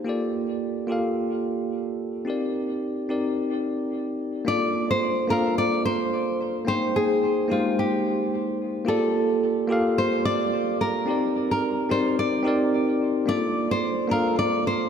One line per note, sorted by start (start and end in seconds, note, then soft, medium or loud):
0.04 0.85 A#3 medium
0.04 0.86 F4 medium
0.04 0.86 G4 medium
0.04 0.87 A4 medium
0.09 0.88 D5 medium
0.87 2.23 A#3 medium
0.87 2.23 F4 medium
0.87 2.24 G4 medium
0.87 2.25 A4 medium
0.92 2.25 F5 medium
2.25 3.06 C4 medium
2.25 3.06 D#4 medium
2.25 3.07 G4 medium
2.25 3.07 A#4 medium
2.30 3.08 D5 medium
3.09 3.37 C4 medium
3.09 3.37 D#4 medium
3.09 3.37 G4 medium
3.09 3.38 A#4 medium
3.09 3.38 D5 medium
4.45 5.26 A#3 medium
4.45 5.26 D4 medium
4.45 5.27 F4 medium
4.45 5.28 A4 medium
4.45 4.90 D5 loud
4.50 5.28 D5 medium
4.91 5.30 C5 loud
5.28 6.63 A#3 loud
5.28 6.64 D4 medium
5.28 6.64 F4 medium
5.28 6.65 A4 medium
5.28 5.58 A#4 loud
5.32 6.66 F5 loud
5.58 5.85 D5 loud
5.85 6.67 C5 loud
6.65 7.46 A#3 medium
6.65 7.47 D#4 medium
6.65 7.48 G#4 medium
6.65 6.96 C5 loud
6.65 7.47 G5 medium
6.70 7.48 C5 medium
6.96 7.51 G#4 medium
7.48 8.85 G#3 medium
7.48 8.84 A#3 medium
7.48 8.84 D#4 medium
7.48 7.79 F4 medium
7.48 8.85 G4 medium
7.53 8.86 C5 medium
7.79 8.57 G4 medium
8.85 9.66 A#3 medium
8.85 9.67 F4 medium
8.85 9.67 G4 medium
8.85 10.01 A4 loud
8.85 9.68 A4 medium
8.90 9.68 D5 loud
9.68 11.04 A#3 loud
9.68 11.04 F4 medium
9.68 11.05 G4 medium
9.68 11.05 A4 medium
9.72 11.06 F5 loud
9.98 10.25 C5 loud
10.25 10.81 D5 loud
10.81 11.50 A#4 medium
11.06 11.86 C4 medium
11.06 11.87 D#4 medium
11.06 11.88 G4 medium
11.06 11.88 A#4 medium
11.11 11.89 D5 medium
11.51 11.91 A#4 medium
11.89 12.41 C4 medium
11.89 12.43 D#4 medium
11.89 12.43 G4 medium
11.89 12.43 A#4 medium
11.89 12.19 C5 loud
11.89 12.44 D5 medium
12.19 12.97 D5 medium
12.43 13.24 C4 medium
12.43 13.24 D#4 medium
12.43 13.25 G4 medium
12.43 13.26 A#4 medium
12.48 13.26 D5 loud
13.26 14.07 A#3 medium
13.26 14.07 D4 medium
13.26 14.08 F4 medium
13.26 14.08 A4 medium
13.26 13.71 D5 loud
13.31 14.09 D5 loud
13.71 14.11 C5 loud
14.08 14.89 A#3 medium
14.08 14.89 D4 medium
14.08 14.89 F4 medium
14.08 14.89 A4 medium
14.08 14.38 A#4 loud
14.13 14.89 F5 loud
14.39 14.67 D5 loud
14.67 14.89 C5 loud